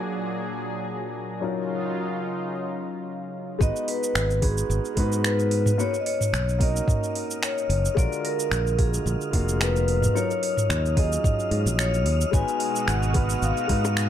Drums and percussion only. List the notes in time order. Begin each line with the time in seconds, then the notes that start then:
3.61 kick, shaker
3.76 shaker
3.88 open hi-hat
4.03 shaker
4.15 finger snap, shaker
4.31 shaker
4.42 kick, open hi-hat
4.58 shaker
4.71 shaker
4.85 shaker
4.97 kick, open hi-hat
5.12 shaker
5.24 finger snap, shaker
5.39 shaker
5.51 open hi-hat
5.66 mid tom, shaker
5.80 shaker
5.94 shaker
6.06 open hi-hat
6.21 mid tom, shaker
6.34 finger snap, shaker
6.49 shaker
6.60 kick, open hi-hat
6.76 shaker
6.88 kick, mid tom, shaker
7.04 shaker
7.15 open hi-hat
7.31 shaker
7.43 finger snap, shaker
7.58 shaker
7.70 open hi-hat
7.85 shaker
7.97 kick, shaker
8.13 shaker
8.25 open hi-hat
8.40 shaker
8.51 finger snap, shaker
8.67 shaker
8.79 kick, open hi-hat
8.94 shaker
9.07 shaker
9.21 shaker
9.33 kick, open hi-hat
9.49 shaker
9.61 finger snap, shaker
9.76 shaker
9.88 open hi-hat
10.02 mid tom, shaker
10.17 shaker
10.31 shaker
10.43 open hi-hat
10.57 mid tom, shaker
10.70 finger snap, shaker
10.86 shaker
10.97 kick, open hi-hat
11.12 shaker
11.24 kick, mid tom, shaker
11.39 shaker
11.51 open hi-hat
11.67 shaker
11.79 finger snap, shaker
11.94 shaker
12.06 open hi-hat
12.21 shaker
12.33 kick, shaker
12.48 shaker
12.60 open hi-hat
12.76 shaker
12.88 finger snap, shaker
13.03 shaker
13.14 kick, open hi-hat
13.30 shaker
13.42 shaker
13.57 shaker
13.69 kick, open hi-hat
13.85 high bongo, shaker
13.97 finger snap, shaker